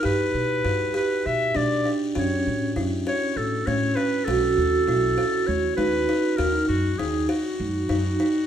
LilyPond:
<<
  \new Staff \with { instrumentName = "Clarinet" } { \time 7/8 \key fis \dorian \tempo 4 = 99 b'4. b'8 e''8 d''8 r8 | cis''4 r8 cis''8 a'8 cis''8 b'8 | a'2 cis''8 b'4 | ais'8 fis'8 gis'8 fis'2 | }
  \new Staff \with { instrumentName = "Kalimba" } { \time 7/8 \key fis \dorian g'4 fis'8 g'4 d'8 d'8 | fis'4 e'8 fis'4 cis'8 cis'8 | fis'4 e'8 fis'4 dis'8 dis'8 | fis'4 dis'8 fis'4 dis'8 dis'8 | }
  \new Staff \with { instrumentName = "Vibraphone" } { \time 7/8 \key fis \dorian r2. r8 | cis'2.~ cis'8 | fis'2.~ fis'8 | dis'2~ dis'8 dis'4 | }
  \new Staff \with { instrumentName = "Upright bass" } { \clef bass \time 7/8 \key fis \dorian g,8 b,8 g,8 r8 b,8 b,8 r8 | fis,8 a,8 fis,8 r8 a,8 a,8 r8 | b,,8 dis,8 b,,8 r8 dis,8 dis,8 r8 | dis,8 fis,8 dis,8 r8 fis,8 fis,8 r8 | }
>>